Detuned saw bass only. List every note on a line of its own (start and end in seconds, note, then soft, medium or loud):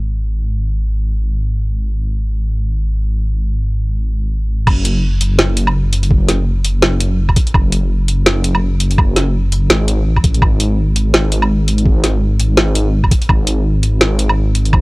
0.00 4.66 G#1 medium
4.67 5.74 F#1 medium
5.75 6.81 F#1 loud
6.83 7.35 F#1 loud
7.54 8.61 F#1 medium
8.62 9.69 F#1 loud
9.70 10.05 G#1 loud
10.06 10.41 A1 loud
10.42 11.48 G#1 medium
11.50 12.56 G#1 loud
12.57 13.10 G#1 loud
13.29 14.36 G#1 medium
14.37 14.81 G#1 loud